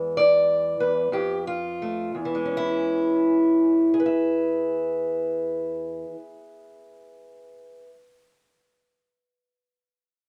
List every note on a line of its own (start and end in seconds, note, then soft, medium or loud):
0.00 0.79 E2 medium
0.00 1.12 E3 medium
0.00 1.12 G#3 soft
0.00 0.80 B3 soft
0.00 0.14 D5 soft
0.17 1.13 D5 medium
0.80 1.12 E2 medium
0.80 1.12 B4 medium
1.12 2.11 F2 medium
1.12 1.46 G4 medium
1.47 2.16 F4 medium
1.82 2.11 A3 soft
2.15 6.05 E2 medium
2.25 6.15 E3 medium
2.35 3.93 G#3 soft
2.45 3.99 C#4 medium
2.57 3.96 E4 loud
3.94 7.84 G#4 medium
4.00 7.90 B4 medium
4.06 7.96 E5 medium